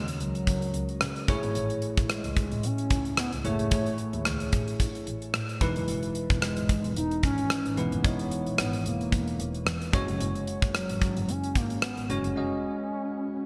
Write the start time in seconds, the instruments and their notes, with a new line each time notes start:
Already playing: double bass D#2, tine electric piano C#3 G#3 C#4 F#4 A#4 C#5
0.08 closed hi-hat
0.20 double bass C#2, soft synth lead F#3, closed hi-hat
0.35 closed hi-hat
0.47 double bass C#2, kick, closed hi-hat
0.62 closed hi-hat
0.74 double bass C#2, closed hi-hat
0.89 closed hi-hat
1.01 double bass C#3, cross-stick, closed hi-hat
1.16 closed hi-hat
1.28 double bass A1, tine electric piano A2 A3 E4 G#4 C#5, kick, closed hi-hat
1.43 double bass G#1, closed hi-hat
1.55 double bass A1, closed hi-hat
1.70 closed hi-hat
1.82 closed hi-hat
1.97 double bass A1, kick, closed hi-hat
2.09 soft synth lead G#3, cross-stick, closed hi-hat
2.24 double bass C#2, closed hi-hat
2.36 kick, closed hi-hat
2.52 double bass A1, closed hi-hat
2.63 double bass A1, soft synth lead C#4, closed hi-hat
2.78 closed hi-hat
2.90 double bass C#2, kick, closed hi-hat
3.05 closed hi-hat
3.17 soft synth lead B3, cross-stick, closed hi-hat
3.32 double bass C#2, closed hi-hat
3.44 double bass F#1, tine electric piano A2 A3 E4 G#4 C#5, soft synth lead A3, closed hi-hat
3.59 double bass G#1, closed hi-hat
3.71 double bass A1, tine electric piano A3 E4 G#4 C#5, kick, closed hi-hat
3.86 closed hi-hat
3.98 closed hi-hat
4.13 double bass D#2, closed hi-hat
4.25 double bass C#2, cross-stick, closed hi-hat
4.40 closed hi-hat
4.52 double bass A1, kick, closed hi-hat
4.68 closed hi-hat
4.80 double bass A1, kick, closed hi-hat
4.95 closed hi-hat
5.07 double bass A1, closed hi-hat
5.22 closed hi-hat
5.34 double bass A2, cross-stick, closed hi-hat
5.49 closed hi-hat
5.61 double bass E1, tine electric piano E3 G#3 D#4 E4 B4, kick, closed hi-hat
5.76 double bass F#1, closed hi-hat
5.88 double bass E1, closed hi-hat
6.03 closed hi-hat
6.15 closed hi-hat
6.30 double bass E1, kick, closed hi-hat
6.42 soft synth lead G#3, cross-stick, closed hi-hat
6.57 double bass G#1, closed hi-hat
6.69 kick, closed hi-hat
6.84 double bass E1, closed hi-hat
6.96 double bass E1, soft synth lead D#4, closed hi-hat
7.11 closed hi-hat
7.23 double bass G#1, soft synth lead C#4, kick, closed hi-hat
7.38 closed hi-hat
7.50 cross-stick, closed hi-hat
7.65 double bass G#1, closed hi-hat
7.77 double bass E1, tine electric piano E3 G#3 D#4 E4 B4, soft synth lead B3, closed hi-hat
7.92 double bass F#1, closed hi-hat
8.04 double bass E1, tine electric piano G#3 D#4 E4 C#5, kick, closed hi-hat
8.19 closed hi-hat
8.31 closed hi-hat
8.46 double bass A#1, closed hi-hat
8.58 double bass G#1, soft synth lead B3, cross-stick, closed hi-hat
8.73 closed hi-hat
8.85 double bass E1, soft synth lead A#3, closed hi-hat
9.01 closed hi-hat
9.12 double bass E1, kick, closed hi-hat
9.28 closed hi-hat
9.39 double bass E1, closed hi-hat
9.54 closed hi-hat
9.66 double bass E2, cross-stick, closed hi-hat
9.82 closed hi-hat
9.93 double bass F#1, tine electric piano G#3 C#4 F#4 C#5, kick, closed hi-hat
10.08 double bass F1, closed hi-hat
10.20 double bass F#1, closed hi-hat
10.35 closed hi-hat
10.47 closed hi-hat
10.62 double bass F#1, kick, closed hi-hat
10.74 soft synth lead F#3, cross-stick, closed hi-hat
10.89 double bass G#1, closed hi-hat
11.02 kick, closed hi-hat
11.17 double bass F#1, closed hi-hat
11.28 double bass F#1, soft synth lead C#4, closed hi-hat
11.44 closed hi-hat
11.55 double bass G#1, soft synth lead A#3, kick, closed hi-hat
11.70 closed hi-hat
11.82 soft synth lead B3, cross-stick, closed hi-hat
11.97 double bass G#1, closed hi-hat
12.09 double bass F#1, tine electric piano G#3 C#4 F#4 C#5, soft synth lead C#4, closed hi-hat
12.24 double bass F1, closed hi-hat
12.36 tine electric piano G#3 C#4 F#4 D#5